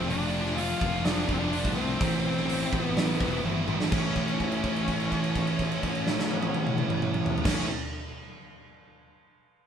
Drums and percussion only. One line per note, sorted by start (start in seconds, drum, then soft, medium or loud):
0.10 open hi-hat medium
0.46 snare soft
0.58 open hi-hat medium
0.81 kick loud
1.05 snare loud
1.05 open hi-hat medium
1.29 kick medium
1.53 open hi-hat medium
1.65 kick medium
2.01 kick loud
2.01 open hi-hat medium
2.37 snare soft
2.49 open hi-hat medium
2.73 kick medium
2.97 snare loud
2.97 open hi-hat medium
3.20 kick medium
3.45 high tom medium
3.68 mid tom loud
3.80 snare loud
3.92 kick loud
3.92 crash loud
4.16 kick medium
4.16 crash soft
4.28 crash soft
4.40 kick medium
4.40 crash soft
4.52 crash soft
4.64 kick medium
4.64 crash soft
4.76 crash soft
4.88 kick medium
4.88 crash soft
5.00 crash soft
5.12 kick medium
5.12 crash soft
5.24 crash medium
5.35 kick medium
5.35 crash medium
5.47 crash medium
5.59 kick medium
5.59 crash medium
5.71 crash medium
5.83 kick medium
5.83 crash medium
5.95 crash medium
6.07 snare medium
6.19 snare loud
6.31 high tom loud
6.42 high tom loud
6.54 high tom loud
6.67 mid tom loud
6.78 mid tom loud
6.90 mid tom loud
7.02 mid tom loud
7.14 mid tom loud
7.26 floor tom loud
7.38 floor tom loud
7.45 kick loud
7.45 snare loud
7.45 crash loud